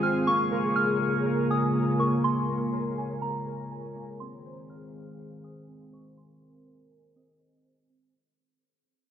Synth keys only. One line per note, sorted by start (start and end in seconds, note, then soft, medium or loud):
0.00 0.27 C4 medium
0.00 0.27 C5 medium
0.00 0.27 G#5 medium
0.27 1.74 A#3 medium
0.51 1.25 A#4 medium
1.26 1.98 A#4 medium
1.50 2.23 G#5 medium
1.75 2.48 A#3 medium
1.99 2.72 A#4 medium
2.24 2.97 G#5 medium
2.49 3.22 A#3 medium
2.73 3.46 A#4 medium
2.98 3.70 G#5 medium
3.23 3.95 A#3 medium
3.47 4.21 A#4 medium
3.71 4.21 G#5 medium
3.96 4.21 A#3 medium
4.21 5.67 C4 medium
4.45 5.18 C5 medium
5.19 5.92 C5 medium
5.43 6.17 G#5 medium
5.68 6.41 C4 medium
5.93 6.65 C5 medium
6.18 6.90 G#5 medium
6.42 7.15 C4 medium
6.66 7.39 C5 medium
6.91 7.64 G#5 medium
7.16 7.88 C4 medium
7.40 8.14 C5 medium
7.65 8.14 G#5 medium
7.90 8.14 C4 medium